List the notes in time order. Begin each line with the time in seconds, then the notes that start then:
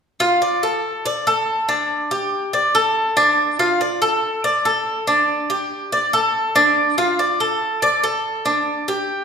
0.20 F4
0.42 D5
0.63 A4
1.06 D5
1.27 A4
1.69 D4
2.11 G4
2.53 D5
2.75 A4
3.17 D4
3.59 F4
3.81 D5
4.02 A4
4.44 D5
4.65 A4
5.07 D4
5.50 G4
5.92 D5
6.13 A4
6.56 D4
6.98 F4
7.19 D5
7.40 A4
7.82 D5
8.04 A4
8.46 D4
8.88 G4